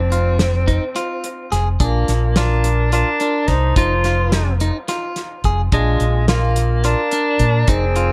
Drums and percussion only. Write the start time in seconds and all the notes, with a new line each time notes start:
0.12 closed hi-hat
0.39 snare, closed hi-hat
0.68 kick, closed hi-hat
0.96 closed hi-hat
1.24 closed hi-hat
1.52 snare, closed hi-hat
1.80 kick, closed hi-hat
2.08 snare, closed hi-hat
2.36 snare, closed hi-hat
2.64 closed hi-hat
2.92 closed hi-hat
3.20 closed hi-hat
3.48 kick, snare, closed hi-hat
3.76 kick, closed hi-hat
4.04 snare, closed hi-hat
4.32 snare, closed hi-hat
4.60 closed hi-hat
4.88 snare, closed hi-hat
5.16 snare, closed hi-hat
5.44 kick, closed hi-hat
5.72 kick, closed hi-hat
6.00 closed hi-hat
6.28 snare, closed hi-hat
6.56 closed hi-hat
6.84 closed hi-hat
7.11 closed hi-hat
7.39 kick, closed hi-hat
7.68 kick, closed hi-hat
7.96 closed hi-hat